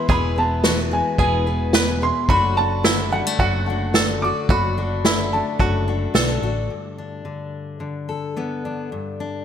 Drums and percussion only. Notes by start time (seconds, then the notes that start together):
0.09 kick
0.64 snare
1.18 kick
1.73 snare
2.29 kick
2.84 snare
3.39 kick
3.94 snare
4.49 kick
5.05 snare
5.60 kick
6.15 snare